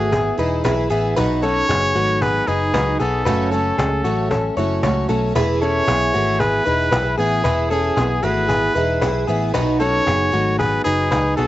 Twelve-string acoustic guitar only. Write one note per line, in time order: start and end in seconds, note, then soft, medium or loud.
0.00 0.36 E3 medium
0.00 0.38 B3 medium
0.00 0.38 E4 medium
0.00 0.39 G#4 medium
0.38 0.63 E3 medium
0.38 0.63 B3 medium
0.38 0.64 E4 medium
0.38 0.65 G#4 medium
0.64 0.89 E3 medium
0.64 0.89 B3 medium
0.64 0.90 E4 medium
0.64 0.91 G#4 medium
0.90 1.17 E3 medium
0.90 1.16 B3 medium
0.90 1.17 E4 medium
0.90 1.17 G#4 medium
1.16 1.43 B2 medium
1.16 1.41 F#3 medium
1.16 1.42 B3 medium
1.16 1.42 D#4 medium
1.16 1.44 F#4 medium
1.42 1.94 F#3 medium
1.42 1.94 B3 medium
1.42 1.95 D#4 medium
1.42 1.96 F#4 medium
1.95 2.47 F#3 medium
1.95 2.47 B3 medium
1.95 2.48 D#4 medium
1.95 2.49 F#4 medium
2.47 2.73 F#3 medium
2.47 2.73 B3 medium
2.47 2.74 D#4 medium
2.47 2.75 F#4 medium
2.74 2.99 F#3 medium
2.74 3.00 B3 medium
2.74 3.00 D#4 medium
2.74 3.01 F#4 medium
3.00 3.26 F#3 medium
3.00 3.27 B3 medium
3.00 3.27 D#4 medium
3.00 3.26 F#4 medium
3.26 3.52 F#2 medium
3.26 3.53 C#3 medium
3.26 3.51 F#3 medium
3.26 3.52 A3 medium
3.26 3.52 C#4 medium
3.26 3.53 F#4 medium
3.52 4.04 F#3 soft
3.52 4.04 A3 medium
3.52 4.05 C#4 medium
3.52 4.06 F#4 medium
4.05 4.56 F#3 medium
4.05 4.57 A3 medium
4.05 4.57 C#4 medium
4.05 4.58 F#4 medium
4.57 4.82 F#3 medium
4.57 4.83 A3 medium
4.57 4.83 C#4 medium
4.57 4.84 F#4 medium
4.83 5.08 F#3 medium
4.83 5.08 A3 medium
4.83 5.09 C#4 medium
4.83 5.10 F#4 medium
5.09 5.35 F#3 medium
5.09 5.35 A3 medium
5.09 5.36 C#4 medium
5.09 5.36 F#4 medium
5.35 5.61 E3 medium
5.35 5.61 B3 medium
5.35 5.62 E4 medium
5.35 5.62 G#4 medium
5.62 6.13 E3 medium
5.62 6.14 B3 medium
5.62 6.14 E4 medium
5.62 6.15 G#4 medium
6.14 6.64 E3 medium
6.14 6.66 B3 medium
6.14 6.66 E4 medium
6.14 6.66 G#4 medium
6.65 6.91 E3 soft
6.65 6.92 B3 medium
6.65 6.92 E4 medium
6.65 6.92 G#4 medium
6.92 7.17 E3 medium
6.92 7.18 B3 soft
6.92 7.19 E4 medium
6.92 7.19 G#4 medium
7.18 7.43 E3 soft
7.18 7.44 B3 medium
7.18 7.44 E4 medium
7.18 7.45 G#4 medium
7.44 7.70 E3 medium
7.44 7.71 B3 medium
7.44 7.71 E4 medium
7.44 7.72 G#4 medium
7.71 8.22 E3 soft
7.71 8.23 B3 medium
7.71 8.23 E4 medium
7.71 8.23 G#4 medium
8.23 8.74 E3 medium
8.23 8.76 B3 medium
8.23 8.76 E4 medium
8.23 8.76 G#4 medium
8.75 9.01 E3 medium
8.75 9.01 B3 medium
8.75 9.02 E4 medium
8.75 9.03 G#4 medium
9.02 9.27 E3 medium
9.02 9.28 B3 medium
9.02 9.28 E4 medium
9.02 9.29 G#4 medium
9.28 9.54 E3 medium
9.28 9.54 B3 medium
9.28 9.55 E4 medium
9.28 9.55 G#4 medium
9.54 9.81 B2 medium
9.54 9.79 F#3 medium
9.54 9.79 B3 medium
9.54 9.80 D#4 medium
9.54 9.81 F#4 medium
9.80 10.32 F#3 medium
9.80 10.32 B3 medium
9.80 10.32 D#4 medium
9.80 10.34 F#4 medium
10.32 10.84 F#3 medium
10.32 10.84 B3 medium
10.32 10.85 D#4 medium
10.32 10.86 F#4 medium
10.85 11.10 F#3 medium
10.85 11.10 B3 medium
10.85 11.11 D#4 medium
10.85 11.12 F#4 medium
11.11 11.36 F#3 medium
11.11 11.36 B3 medium
11.11 11.37 D#4 medium
11.11 11.38 F#4 medium
11.37 11.47 F#3 medium
11.37 11.47 B3 medium
11.37 11.47 D#4 medium
11.37 11.47 F#4 medium